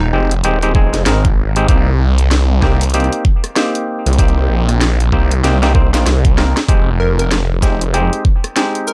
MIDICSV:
0, 0, Header, 1, 5, 480
1, 0, Start_track
1, 0, Key_signature, -4, "minor"
1, 0, Tempo, 625000
1, 1297, Time_signature, 4, 2, 24, 8
1, 6858, End_track
2, 0, Start_track
2, 0, Title_t, "Digital synth lead"
2, 0, Program_c, 0, 84
2, 0, Note_on_c, 0, 63, 80
2, 62, Note_off_c, 0, 63, 0
2, 5375, Note_on_c, 0, 70, 92
2, 5468, Note_off_c, 0, 70, 0
2, 5520, Note_on_c, 0, 70, 80
2, 5582, Note_off_c, 0, 70, 0
2, 6816, Note_on_c, 0, 70, 96
2, 6858, Note_off_c, 0, 70, 0
2, 6858, End_track
3, 0, Start_track
3, 0, Title_t, "Clav"
3, 0, Program_c, 1, 7
3, 100, Note_on_c, 1, 60, 80
3, 101, Note_on_c, 1, 56, 91
3, 101, Note_on_c, 1, 63, 79
3, 101, Note_on_c, 1, 67, 98
3, 259, Note_off_c, 1, 60, 0
3, 260, Note_off_c, 1, 56, 0
3, 260, Note_off_c, 1, 63, 0
3, 260, Note_off_c, 1, 67, 0
3, 342, Note_on_c, 1, 56, 94
3, 342, Note_on_c, 1, 60, 91
3, 342, Note_on_c, 1, 63, 91
3, 343, Note_on_c, 1, 67, 107
3, 449, Note_off_c, 1, 56, 0
3, 449, Note_off_c, 1, 60, 0
3, 449, Note_off_c, 1, 63, 0
3, 450, Note_off_c, 1, 67, 0
3, 483, Note_on_c, 1, 56, 96
3, 483, Note_on_c, 1, 60, 90
3, 483, Note_on_c, 1, 67, 106
3, 484, Note_on_c, 1, 63, 86
3, 559, Note_off_c, 1, 56, 0
3, 559, Note_off_c, 1, 60, 0
3, 559, Note_off_c, 1, 63, 0
3, 559, Note_off_c, 1, 67, 0
3, 578, Note_on_c, 1, 60, 85
3, 579, Note_on_c, 1, 56, 99
3, 579, Note_on_c, 1, 63, 91
3, 579, Note_on_c, 1, 68, 106
3, 789, Note_off_c, 1, 56, 0
3, 789, Note_off_c, 1, 60, 0
3, 789, Note_off_c, 1, 63, 0
3, 789, Note_off_c, 1, 68, 0
3, 817, Note_on_c, 1, 63, 66
3, 817, Note_on_c, 1, 70, 85
3, 818, Note_on_c, 1, 60, 73
3, 819, Note_on_c, 1, 56, 73
3, 978, Note_off_c, 1, 63, 0
3, 978, Note_off_c, 1, 70, 0
3, 979, Note_off_c, 1, 56, 0
3, 979, Note_off_c, 1, 60, 0
3, 1201, Note_on_c, 1, 56, 101
3, 1201, Note_on_c, 1, 60, 93
3, 1201, Note_on_c, 1, 63, 90
3, 1201, Note_on_c, 1, 67, 111
3, 1283, Note_off_c, 1, 56, 0
3, 1283, Note_off_c, 1, 60, 0
3, 1283, Note_off_c, 1, 63, 0
3, 1283, Note_off_c, 1, 67, 0
3, 1297, Note_on_c, 1, 58, 101
3, 1297, Note_on_c, 1, 60, 90
3, 1297, Note_on_c, 1, 67, 102
3, 1299, Note_on_c, 1, 63, 95
3, 1458, Note_off_c, 1, 58, 0
3, 1458, Note_off_c, 1, 60, 0
3, 1458, Note_off_c, 1, 67, 0
3, 1459, Note_off_c, 1, 63, 0
3, 2017, Note_on_c, 1, 58, 92
3, 2017, Note_on_c, 1, 60, 80
3, 2017, Note_on_c, 1, 63, 80
3, 2017, Note_on_c, 1, 67, 100
3, 2178, Note_off_c, 1, 58, 0
3, 2178, Note_off_c, 1, 60, 0
3, 2178, Note_off_c, 1, 63, 0
3, 2178, Note_off_c, 1, 67, 0
3, 2260, Note_on_c, 1, 58, 93
3, 2260, Note_on_c, 1, 60, 84
3, 2260, Note_on_c, 1, 63, 94
3, 2260, Note_on_c, 1, 67, 110
3, 2487, Note_off_c, 1, 58, 0
3, 2487, Note_off_c, 1, 60, 0
3, 2487, Note_off_c, 1, 63, 0
3, 2487, Note_off_c, 1, 67, 0
3, 2737, Note_on_c, 1, 58, 88
3, 2737, Note_on_c, 1, 67, 96
3, 2738, Note_on_c, 1, 60, 80
3, 2738, Note_on_c, 1, 63, 85
3, 3194, Note_off_c, 1, 58, 0
3, 3194, Note_off_c, 1, 60, 0
3, 3194, Note_off_c, 1, 63, 0
3, 3194, Note_off_c, 1, 67, 0
3, 3216, Note_on_c, 1, 63, 77
3, 3217, Note_on_c, 1, 58, 91
3, 3217, Note_on_c, 1, 60, 85
3, 3217, Note_on_c, 1, 67, 98
3, 3913, Note_off_c, 1, 63, 0
3, 3914, Note_off_c, 1, 58, 0
3, 3914, Note_off_c, 1, 60, 0
3, 3914, Note_off_c, 1, 67, 0
3, 3938, Note_on_c, 1, 58, 91
3, 3939, Note_on_c, 1, 60, 82
3, 3939, Note_on_c, 1, 63, 81
3, 3939, Note_on_c, 1, 67, 92
3, 4098, Note_off_c, 1, 58, 0
3, 4099, Note_off_c, 1, 60, 0
3, 4099, Note_off_c, 1, 63, 0
3, 4099, Note_off_c, 1, 67, 0
3, 4177, Note_on_c, 1, 58, 96
3, 4177, Note_on_c, 1, 67, 104
3, 4178, Note_on_c, 1, 60, 90
3, 4178, Note_on_c, 1, 63, 90
3, 4287, Note_off_c, 1, 58, 0
3, 4287, Note_off_c, 1, 60, 0
3, 4287, Note_off_c, 1, 63, 0
3, 4287, Note_off_c, 1, 67, 0
3, 4322, Note_on_c, 1, 58, 96
3, 4322, Note_on_c, 1, 60, 90
3, 4322, Note_on_c, 1, 63, 90
3, 4322, Note_on_c, 1, 67, 111
3, 4398, Note_off_c, 1, 58, 0
3, 4398, Note_off_c, 1, 60, 0
3, 4398, Note_off_c, 1, 63, 0
3, 4398, Note_off_c, 1, 67, 0
3, 4418, Note_on_c, 1, 63, 78
3, 4418, Note_on_c, 1, 72, 96
3, 4419, Note_on_c, 1, 58, 87
3, 4419, Note_on_c, 1, 60, 82
3, 4540, Note_off_c, 1, 58, 0
3, 4540, Note_off_c, 1, 60, 0
3, 4540, Note_off_c, 1, 63, 0
3, 4540, Note_off_c, 1, 72, 0
3, 4563, Note_on_c, 1, 58, 81
3, 4563, Note_on_c, 1, 65, 90
3, 4564, Note_on_c, 1, 60, 69
3, 4564, Note_on_c, 1, 63, 72
3, 4683, Note_off_c, 1, 58, 0
3, 4683, Note_off_c, 1, 63, 0
3, 4683, Note_off_c, 1, 65, 0
3, 4684, Note_off_c, 1, 60, 0
3, 4896, Note_on_c, 1, 58, 70
3, 4896, Note_on_c, 1, 70, 81
3, 4897, Note_on_c, 1, 60, 66
3, 4897, Note_on_c, 1, 63, 67
3, 5057, Note_off_c, 1, 58, 0
3, 5058, Note_off_c, 1, 60, 0
3, 5058, Note_off_c, 1, 63, 0
3, 5058, Note_off_c, 1, 70, 0
3, 5135, Note_on_c, 1, 60, 85
3, 5135, Note_on_c, 1, 67, 108
3, 5136, Note_on_c, 1, 56, 99
3, 5136, Note_on_c, 1, 63, 86
3, 5297, Note_off_c, 1, 60, 0
3, 5297, Note_off_c, 1, 67, 0
3, 5298, Note_off_c, 1, 56, 0
3, 5298, Note_off_c, 1, 63, 0
3, 5857, Note_on_c, 1, 56, 90
3, 5857, Note_on_c, 1, 63, 83
3, 5858, Note_on_c, 1, 60, 83
3, 5859, Note_on_c, 1, 67, 99
3, 6018, Note_off_c, 1, 56, 0
3, 6018, Note_off_c, 1, 63, 0
3, 6019, Note_off_c, 1, 60, 0
3, 6019, Note_off_c, 1, 67, 0
3, 6096, Note_on_c, 1, 63, 89
3, 6097, Note_on_c, 1, 56, 95
3, 6097, Note_on_c, 1, 60, 89
3, 6097, Note_on_c, 1, 67, 105
3, 6325, Note_off_c, 1, 60, 0
3, 6325, Note_off_c, 1, 63, 0
3, 6325, Note_off_c, 1, 67, 0
3, 6326, Note_off_c, 1, 56, 0
3, 6578, Note_on_c, 1, 67, 96
3, 6579, Note_on_c, 1, 56, 92
3, 6579, Note_on_c, 1, 60, 80
3, 6579, Note_on_c, 1, 63, 86
3, 6858, Note_off_c, 1, 56, 0
3, 6858, Note_off_c, 1, 60, 0
3, 6858, Note_off_c, 1, 63, 0
3, 6858, Note_off_c, 1, 67, 0
3, 6858, End_track
4, 0, Start_track
4, 0, Title_t, "Detuned saw bass"
4, 0, Program_c, 2, 39
4, 0, Note_on_c, 2, 27, 94
4, 80, Note_off_c, 2, 27, 0
4, 93, Note_on_c, 2, 29, 96
4, 320, Note_off_c, 2, 29, 0
4, 335, Note_on_c, 2, 27, 100
4, 697, Note_off_c, 2, 27, 0
4, 716, Note_on_c, 2, 29, 100
4, 799, Note_off_c, 2, 29, 0
4, 811, Note_on_c, 2, 32, 100
4, 1279, Note_off_c, 2, 32, 0
4, 1293, Note_on_c, 2, 36, 99
4, 2000, Note_off_c, 2, 36, 0
4, 2013, Note_on_c, 2, 36, 96
4, 2376, Note_off_c, 2, 36, 0
4, 3120, Note_on_c, 2, 36, 104
4, 3441, Note_off_c, 2, 36, 0
4, 3452, Note_on_c, 2, 34, 93
4, 3919, Note_off_c, 2, 34, 0
4, 3935, Note_on_c, 2, 36, 96
4, 4161, Note_off_c, 2, 36, 0
4, 4175, Note_on_c, 2, 36, 92
4, 4506, Note_off_c, 2, 36, 0
4, 4506, Note_on_c, 2, 35, 92
4, 4641, Note_off_c, 2, 35, 0
4, 4655, Note_on_c, 2, 36, 103
4, 5017, Note_off_c, 2, 36, 0
4, 5132, Note_on_c, 2, 29, 93
4, 5839, Note_off_c, 2, 29, 0
4, 5854, Note_on_c, 2, 29, 97
4, 6216, Note_off_c, 2, 29, 0
4, 6858, End_track
5, 0, Start_track
5, 0, Title_t, "Drums"
5, 240, Note_on_c, 9, 42, 53
5, 317, Note_off_c, 9, 42, 0
5, 335, Note_on_c, 9, 42, 66
5, 412, Note_off_c, 9, 42, 0
5, 480, Note_on_c, 9, 42, 37
5, 557, Note_off_c, 9, 42, 0
5, 574, Note_on_c, 9, 36, 98
5, 651, Note_off_c, 9, 36, 0
5, 719, Note_on_c, 9, 38, 38
5, 719, Note_on_c, 9, 42, 54
5, 796, Note_off_c, 9, 38, 0
5, 796, Note_off_c, 9, 42, 0
5, 814, Note_on_c, 9, 38, 125
5, 814, Note_on_c, 9, 42, 66
5, 891, Note_off_c, 9, 38, 0
5, 891, Note_off_c, 9, 42, 0
5, 958, Note_on_c, 9, 42, 35
5, 959, Note_on_c, 9, 36, 98
5, 1035, Note_off_c, 9, 42, 0
5, 1036, Note_off_c, 9, 36, 0
5, 1198, Note_on_c, 9, 42, 50
5, 1274, Note_off_c, 9, 42, 0
5, 1294, Note_on_c, 9, 36, 108
5, 1294, Note_on_c, 9, 42, 69
5, 1371, Note_off_c, 9, 36, 0
5, 1371, Note_off_c, 9, 42, 0
5, 1677, Note_on_c, 9, 42, 53
5, 1754, Note_off_c, 9, 42, 0
5, 1776, Note_on_c, 9, 38, 109
5, 1776, Note_on_c, 9, 42, 64
5, 1852, Note_off_c, 9, 38, 0
5, 1852, Note_off_c, 9, 42, 0
5, 2013, Note_on_c, 9, 38, 38
5, 2014, Note_on_c, 9, 36, 60
5, 2090, Note_off_c, 9, 38, 0
5, 2091, Note_off_c, 9, 36, 0
5, 2158, Note_on_c, 9, 42, 52
5, 2175, Note_off_c, 9, 42, 0
5, 2175, Note_on_c, 9, 42, 41
5, 2224, Note_off_c, 9, 42, 0
5, 2224, Note_on_c, 9, 42, 33
5, 2256, Note_off_c, 9, 42, 0
5, 2256, Note_on_c, 9, 42, 62
5, 2304, Note_off_c, 9, 42, 0
5, 2304, Note_on_c, 9, 42, 23
5, 2335, Note_off_c, 9, 42, 0
5, 2335, Note_on_c, 9, 42, 19
5, 2400, Note_off_c, 9, 42, 0
5, 2400, Note_on_c, 9, 42, 36
5, 2477, Note_off_c, 9, 42, 0
5, 2495, Note_on_c, 9, 36, 98
5, 2572, Note_off_c, 9, 36, 0
5, 2640, Note_on_c, 9, 37, 61
5, 2640, Note_on_c, 9, 42, 55
5, 2717, Note_off_c, 9, 37, 0
5, 2717, Note_off_c, 9, 42, 0
5, 2736, Note_on_c, 9, 38, 118
5, 2736, Note_on_c, 9, 42, 65
5, 2813, Note_off_c, 9, 38, 0
5, 2813, Note_off_c, 9, 42, 0
5, 2881, Note_on_c, 9, 42, 37
5, 2957, Note_off_c, 9, 42, 0
5, 3121, Note_on_c, 9, 42, 49
5, 3171, Note_off_c, 9, 42, 0
5, 3171, Note_on_c, 9, 42, 41
5, 3215, Note_on_c, 9, 36, 115
5, 3218, Note_off_c, 9, 42, 0
5, 3218, Note_on_c, 9, 42, 70
5, 3289, Note_off_c, 9, 42, 0
5, 3289, Note_on_c, 9, 42, 30
5, 3291, Note_off_c, 9, 36, 0
5, 3366, Note_off_c, 9, 42, 0
5, 3600, Note_on_c, 9, 37, 58
5, 3600, Note_on_c, 9, 42, 53
5, 3677, Note_off_c, 9, 37, 0
5, 3677, Note_off_c, 9, 42, 0
5, 3696, Note_on_c, 9, 38, 121
5, 3696, Note_on_c, 9, 42, 68
5, 3772, Note_off_c, 9, 38, 0
5, 3772, Note_off_c, 9, 42, 0
5, 3842, Note_on_c, 9, 42, 37
5, 3919, Note_off_c, 9, 42, 0
5, 3935, Note_on_c, 9, 36, 58
5, 4012, Note_off_c, 9, 36, 0
5, 4081, Note_on_c, 9, 42, 51
5, 4158, Note_off_c, 9, 42, 0
5, 4179, Note_on_c, 9, 38, 62
5, 4179, Note_on_c, 9, 42, 66
5, 4256, Note_off_c, 9, 38, 0
5, 4256, Note_off_c, 9, 42, 0
5, 4322, Note_on_c, 9, 38, 56
5, 4322, Note_on_c, 9, 42, 37
5, 4399, Note_off_c, 9, 38, 0
5, 4399, Note_off_c, 9, 42, 0
5, 4415, Note_on_c, 9, 36, 98
5, 4492, Note_off_c, 9, 36, 0
5, 4561, Note_on_c, 9, 38, 73
5, 4561, Note_on_c, 9, 42, 59
5, 4638, Note_off_c, 9, 38, 0
5, 4638, Note_off_c, 9, 42, 0
5, 4657, Note_on_c, 9, 38, 89
5, 4657, Note_on_c, 9, 42, 72
5, 4734, Note_off_c, 9, 38, 0
5, 4734, Note_off_c, 9, 42, 0
5, 4799, Note_on_c, 9, 36, 102
5, 4802, Note_on_c, 9, 42, 39
5, 4875, Note_off_c, 9, 36, 0
5, 4879, Note_off_c, 9, 42, 0
5, 4899, Note_on_c, 9, 38, 97
5, 4976, Note_off_c, 9, 38, 0
5, 5044, Note_on_c, 9, 38, 90
5, 5044, Note_on_c, 9, 42, 55
5, 5121, Note_off_c, 9, 38, 0
5, 5121, Note_off_c, 9, 42, 0
5, 5135, Note_on_c, 9, 36, 122
5, 5139, Note_on_c, 9, 42, 68
5, 5211, Note_off_c, 9, 36, 0
5, 5215, Note_off_c, 9, 42, 0
5, 5524, Note_on_c, 9, 42, 58
5, 5601, Note_off_c, 9, 42, 0
5, 5616, Note_on_c, 9, 38, 114
5, 5616, Note_on_c, 9, 42, 69
5, 5693, Note_off_c, 9, 38, 0
5, 5693, Note_off_c, 9, 42, 0
5, 5855, Note_on_c, 9, 36, 63
5, 5858, Note_on_c, 9, 38, 36
5, 5858, Note_on_c, 9, 82, 64
5, 5932, Note_off_c, 9, 36, 0
5, 5935, Note_off_c, 9, 38, 0
5, 5935, Note_off_c, 9, 82, 0
5, 6001, Note_on_c, 9, 42, 57
5, 6077, Note_off_c, 9, 42, 0
5, 6097, Note_on_c, 9, 42, 70
5, 6174, Note_off_c, 9, 42, 0
5, 6243, Note_on_c, 9, 42, 40
5, 6320, Note_off_c, 9, 42, 0
5, 6335, Note_on_c, 9, 36, 103
5, 6412, Note_off_c, 9, 36, 0
5, 6482, Note_on_c, 9, 37, 61
5, 6482, Note_on_c, 9, 42, 62
5, 6559, Note_off_c, 9, 37, 0
5, 6559, Note_off_c, 9, 42, 0
5, 6577, Note_on_c, 9, 38, 116
5, 6577, Note_on_c, 9, 42, 72
5, 6654, Note_off_c, 9, 38, 0
5, 6654, Note_off_c, 9, 42, 0
5, 6721, Note_on_c, 9, 42, 38
5, 6798, Note_off_c, 9, 42, 0
5, 6816, Note_on_c, 9, 82, 64
5, 6858, Note_off_c, 9, 82, 0
5, 6858, End_track
0, 0, End_of_file